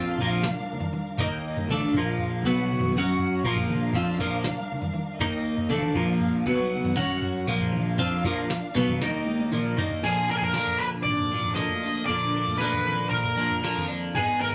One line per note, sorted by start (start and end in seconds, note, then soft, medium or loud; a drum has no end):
0.00 0.17 F2 loud
0.00 0.18 F3 medium
0.00 1.20 F3 medium
0.00 0.19 C4 loud
0.00 1.20 D4 medium
0.00 0.19 F4 medium
0.00 1.69 A#4 medium
0.00 1.20 F5 medium
0.18 0.43 A#1 medium
0.18 0.44 A#2 medium
0.18 0.44 F3 medium
0.18 0.45 A#3 medium
0.18 kick loud
0.18 floor tom medium
0.18 high conga medium
0.43 snare medium
0.43 low conga medium
0.60 high conga medium
0.73 low conga medium
0.80 floor tom medium
0.80 mid tom medium
0.80 high conga medium
0.93 mid tom medium
0.93 high conga medium
1.18 1.66 D#2 medium
1.18 1.69 D#3 medium
1.18 1.69 A#3 medium
1.18 1.70 A#3 medium
1.18 1.69 D#4 medium
1.18 1.69 D#5 medium
1.18 kick loud
1.18 floor tom medium
1.18 low conga medium
1.56 floor tom medium
1.56 high conga medium
1.69 1.93 D2 medium
1.69 1.94 D3 medium
1.69 2.45 F3 medium
1.69 1.95 A3 medium
1.69 2.45 D4 medium
1.69 1.95 D4 loud
1.69 2.45 A#4 medium
1.69 2.45 F5 medium
1.69 kick loud
1.69 mid tom medium
1.69 low conga medium
1.80 mid tom medium
1.93 2.41 A#1 medium
1.93 2.45 A#2 medium
1.93 kick loud
1.93 floor tom medium
1.98 2.45 F3 medium
1.98 2.46 A#3 loud
2.17 floor tom medium
2.43 2.91 B1 medium
2.43 2.95 B2 loud
2.43 2.95 F#3 medium
2.43 3.45 F#3 medium
2.43 2.95 B3 loud
2.43 2.95 B3 medium
2.43 2.96 B4 medium
2.43 2.93 F#5 medium
2.43 kick loud
2.43 low conga medium
2.58 high conga medium
2.71 low conga medium
2.80 floor tom medium
2.80 mid tom medium
2.80 high conga medium
2.92 3.41 F#2 loud
2.92 3.45 C#4 medium
2.92 3.44 C#5 medium
2.92 3.45 F#5 medium
2.92 kick loud
2.92 mid tom medium
2.92 high conga medium
2.97 3.44 F#3 medium
2.97 3.45 C#4 loud
2.97 3.46 F#4 medium
3.18 floor tom medium
3.43 3.92 A#1 medium
3.43 3.94 A#2 loud
3.43 5.19 F3 medium
3.43 3.93 F3 medium
3.43 3.95 A#3 loud
3.43 5.19 D4 medium
3.43 5.68 A#4 medium
3.43 5.19 F5 medium
3.43 kick loud
3.56 floor tom medium
3.68 mid tom medium
3.68 low conga medium
3.93 4.18 F2 medium
3.93 4.19 F3 medium
3.93 4.20 C4 loud
3.93 4.20 F4 loud
3.93 kick loud
3.93 floor tom medium
4.18 4.43 A#1 medium
4.18 4.45 A#2 medium
4.18 4.45 F3 medium
4.18 4.45 A#3 loud
4.18 kick loud
4.18 floor tom medium
4.44 snare medium
4.44 low conga medium
4.59 high conga medium
4.72 low conga medium
4.82 floor tom medium
4.82 mid tom medium
4.82 high conga medium
4.93 mid tom medium
4.93 high conga medium
5.19 5.68 D#2 medium
5.19 5.71 D#3 medium
5.19 5.69 D#3 medium
5.19 5.70 A#3 medium
5.19 5.71 A#3 loud
5.19 5.70 D#4 loud
5.19 5.70 D#5 medium
5.19 kick loud
5.19 floor tom medium
5.57 floor tom medium
5.69 5.95 D2 loud
5.69 5.95 D3 medium
5.69 6.46 F3 medium
5.69 5.95 A3 medium
5.69 5.96 D4 loud
5.69 6.46 D4 medium
5.69 6.47 A#4 medium
5.69 6.46 F5 medium
5.69 kick loud
5.69 mid tom medium
5.69 low conga medium
5.82 mid tom medium
5.94 6.44 A#1 medium
5.94 6.46 A#2 medium
5.94 6.46 F3 loud
5.94 6.47 A#3 loud
5.94 kick medium
5.94 floor tom medium
6.20 floor tom medium
6.46 6.94 B1 loud
6.46 6.96 B2 medium
6.46 6.95 F#3 loud
6.46 7.48 F#3 medium
6.46 6.96 B3 loud
6.46 6.98 B3 medium
6.46 6.99 B4 medium
6.46 7.48 F#5 medium
6.46 kick loud
6.46 low conga medium
6.61 high conga medium
6.75 low conga medium
6.84 floor tom medium
6.84 mid tom medium
6.84 high conga medium
6.96 7.45 F#2 loud
6.96 7.47 F#3 medium
6.96 7.48 C#4 loud
6.96 7.49 C#4 medium
6.96 7.48 F#4 loud
6.96 7.49 C#5 medium
6.96 kick medium
6.96 mid tom medium
6.96 high conga medium
7.21 floor tom medium
7.47 7.96 A#1 loud
7.47 7.98 A#2 medium
7.47 7.97 F3 medium
7.47 9.00 F3 medium
7.47 7.99 A#3 medium
7.47 9.01 D4 medium
7.47 10.02 A#4 medium
7.47 9.01 F5 medium
7.47 kick loud
7.60 floor tom medium
7.72 mid tom medium
7.72 low conga medium
7.98 8.23 F2 medium
7.98 8.24 F3 medium
7.98 8.24 C4 loud
7.98 8.24 F4 loud
7.98 kick medium
7.98 floor tom medium
8.24 8.48 A#1 medium
8.24 8.50 A#2 medium
8.24 8.50 F3 medium
8.24 8.50 A#3 medium
8.24 kick loud
8.24 floor tom medium
8.24 high conga medium
8.50 snare medium
8.75 9.00 B1 medium
8.75 9.00 B2 medium
8.75 9.01 F#3 medium
8.75 9.01 B3 loud
8.75 kick loud
8.75 low conga medium
8.88 floor tom medium
8.88 mid tom medium
8.88 high conga medium
9.01 9.50 D#2 medium
9.01 9.52 D#3 medium
9.01 9.53 D#3 medium
9.01 9.52 A#3 loud
9.01 9.53 A#3 medium
9.01 9.52 D#4 loud
9.01 9.53 D#5 medium
9.01 snare medium
9.01 high conga medium
9.26 high tom medium
9.39 high tom medium
9.51 9.76 A#1 medium
9.51 9.76 A#2 medium
9.51 10.03 F3 medium
9.51 9.78 F3 medium
9.51 9.77 A#3 medium
9.51 10.03 D4 medium
9.51 10.03 D5 medium
9.51 mid tom medium
9.77 10.02 D#2 loud
9.77 10.02 D#3 medium
9.77 10.03 A#3 medium
9.77 10.03 D#4 loud
9.77 floor tom loud
9.77 low conga medium
9.90 floor tom medium
10.02 10.14 A#1 medium
10.02 10.54 A#2 medium
10.02 10.53 D3 medium
10.02 10.31 F3 medium
10.02 10.30 A#3 medium
10.02 10.28 D4 loud
10.02 10.30 G#4 medium
10.02 kick medium
10.02 floor tom medium
10.29 10.73 A#1 medium
10.29 10.55 F3 medium
10.29 10.55 A#3 medium
10.29 10.56 D4 medium
10.29 10.37 A#4 medium
10.37 10.44 G#4 medium
10.41 10.82 A#4 medium
10.41 floor tom medium
10.54 11.57 A#2 medium
10.54 11.55 D3 medium
10.54 11.33 F3 medium
10.54 11.31 A#3 medium
10.54 11.30 D4 medium
10.54 snare medium
10.66 floor tom medium
10.78 10.92 A#1 medium
10.78 10.86 B4 medium
11.03 11.60 G#1 medium
11.03 11.55 D5 medium
11.03 kick medium
11.03 mid tom medium
11.18 floor tom medium
11.32 11.56 F3 medium
11.32 11.58 A#3 medium
11.32 11.59 D4 medium
11.43 floor tom medium
11.55 12.07 D3 medium
11.55 11.85 F3 medium
11.55 11.83 A#3 medium
11.55 12.05 D#5 medium
11.55 snare medium
11.60 11.82 D4 medium
11.68 11.93 D2 medium
11.68 floor tom medium
11.83 12.08 F3 medium
11.83 12.08 A#3 medium
11.83 12.09 D4 medium
12.06 12.58 A#2 medium
12.06 12.59 D3 medium
12.06 12.36 F3 medium
12.06 12.35 A#3 medium
12.06 12.55 D5 medium
12.06 kick medium
12.06 floor tom medium
12.11 12.33 D4 medium
12.34 12.60 F3 medium
12.34 12.60 A#3 medium
12.34 12.61 D4 medium
12.47 12.70 D2 medium
12.47 floor tom medium
12.58 13.63 A#2 medium
12.58 13.61 D3 medium
12.58 13.38 F3 medium
12.58 13.37 A#3 medium
12.58 13.09 B4 medium
12.58 snare medium
12.63 13.36 D4 medium
12.73 floor tom medium
12.73 mid tom medium
12.86 12.97 F2 medium
12.86 mid tom medium
13.10 13.34 A#1 medium
13.10 13.84 A#4 medium
13.10 kick loud
13.10 mid tom medium
13.24 floor tom medium
13.37 13.59 A#1 medium
13.37 13.62 F3 medium
13.37 13.63 A#3 medium
13.37 13.64 D4 medium
13.50 floor tom medium
13.62 13.74 A#1 medium
13.62 14.13 D3 medium
13.62 13.90 F3 medium
13.62 13.88 A#3 medium
13.62 13.87 D4 medium
13.62 snare medium
13.76 14.09 F2 medium
13.76 floor tom medium
13.76 mid tom medium
13.88 14.14 F3 medium
13.88 14.14 A#3 medium
13.88 14.13 D4 medium
14.14 14.26 G#1 medium
14.14 14.55 G#2 medium
14.14 14.55 D#3 medium
14.14 14.43 G#3 medium
14.14 14.42 B3 medium
14.14 14.40 D#4 medium
14.14 14.40 G#4 medium
14.14 kick medium
14.14 floor tom medium
14.41 14.55 G#1 medium
14.41 14.55 G#3 medium
14.41 14.55 B3 medium
14.41 14.55 D#4 medium
14.41 14.55 A#4 medium